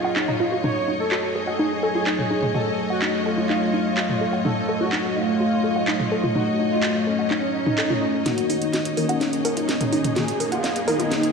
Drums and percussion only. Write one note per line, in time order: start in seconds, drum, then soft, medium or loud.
0.16 clap loud
0.28 mid tom medium
0.64 mid tom medium
1.12 clap loud
2.07 clap loud
2.19 mid tom medium
2.43 mid tom medium
2.54 mid tom medium
3.02 clap loud
3.50 clap medium
3.97 clap loud
4.09 mid tom medium
4.45 mid tom medium
4.92 clap loud
5.88 clap loud
6.00 mid tom medium
6.24 mid tom medium
6.35 mid tom medium
6.83 clap loud
7.31 clap medium
7.66 mid tom medium
7.78 clap loud
7.90 mid tom medium
8.26 snare soft
8.26 closed hi-hat medium
8.26 mid tom medium
8.38 closed hi-hat medium
8.50 open hi-hat loud
8.62 closed hi-hat medium
8.73 snare soft
8.73 closed hi-hat medium
8.85 closed hi-hat medium
8.97 open hi-hat medium
9.09 closed hi-hat medium
9.21 snare soft
9.21 closed hi-hat medium
9.33 closed hi-hat medium
9.45 open hi-hat loud
9.57 closed hi-hat medium
9.69 snare medium
9.69 closed hi-hat medium
9.81 closed hi-hat medium
9.81 mid tom medium
9.93 open hi-hat medium
10.04 closed hi-hat medium
10.04 mid tom medium
10.16 snare medium
10.16 closed hi-hat medium
10.16 mid tom medium
10.28 closed hi-hat medium
10.40 open hi-hat loud
10.52 closed hi-hat medium
10.64 snare medium
10.64 closed hi-hat medium
10.76 closed hi-hat medium
10.88 open hi-hat medium
11.00 closed hi-hat medium
11.12 snare medium
11.12 closed hi-hat medium
11.23 closed hi-hat medium